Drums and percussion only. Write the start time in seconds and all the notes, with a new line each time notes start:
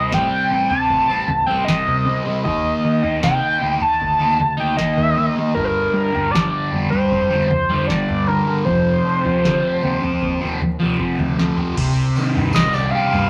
0.12 kick, snare
0.70 floor tom
0.90 kick
1.28 floor tom, mid tom
1.68 kick, snare
1.87 floor tom
2.45 kick, floor tom
3.04 floor tom
3.23 kick, snare
3.81 floor tom
4.01 kick
4.40 floor tom, mid tom
4.79 kick, snare
4.98 floor tom
5.56 kick, floor tom
6.15 floor tom
6.34 kick, snare
6.93 floor tom
7.12 kick
7.51 floor tom, mid tom
7.89 kick, snare
8.09 floor tom
8.67 kick, floor tom
9.25 floor tom
9.44 kick, snare
9.83 mid tom
10.03 floor tom
10.22 kick
10.61 floor tom
11.00 kick
11.19 floor tom, mid tom
11.39 snare
11.57 floor tom
11.77 kick, floor tom, crash, tambourine
11.97 tambourine
12.16 tambourine
12.35 floor tom, tambourine
12.53 kick, snare, tambourine
12.73 tambourine
13.13 floor tom, tambourine